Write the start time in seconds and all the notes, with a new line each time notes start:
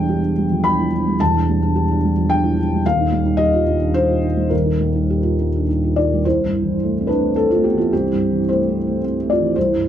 Already playing: E1 E2 G3 D4 G5
0.09 G4
0.23 D4
0.38 G3
0.52 F3
0.64 D4 B5
0.79 E4
0.93 D4
1.07 G3
1.20 E1 E2 A5
1.36 D4
1.50 G3
1.62 D4
1.75 G4
1.91 D4
2.05 G3
2.17 F3
2.30 D4 G5
2.44 E4
2.58 D4
2.74 G3
2.86 D#1 D#2 F5
3.01 D#4
3.12 G3
3.25 D#4
3.37 G4 D#5
3.54 F4
3.68 D#4
3.81 D4
3.94 D#4 C5
4.09 F4
4.23 D#4
4.37 G3
4.50 D#1 D#2 A#4
4.65 D#4
4.81 G3
4.95 D#4
5.10 G4
5.23 F4
5.40 D#4
5.56 D4
5.69 D#4
5.84 F4
5.96 D#4 F4 D5
6.14 G3
6.25 C2 E4 C5
6.46 G2
6.63 E3
6.83 A3
7.00 C4
7.07 D4 B4
7.19 A3
7.36 C4 A4
7.51 A3 F4
7.64 B3 G4
7.74 E3 F4
7.79 A3
7.93 C2 C4 G4
8.12 G2
8.31 E3
8.49 A3 E4 C5
8.69 C4
8.87 A3
9.04 C4
9.22 A3
9.30 F4 D5
9.40 E3
9.56 C2 E4 C5
9.75 G2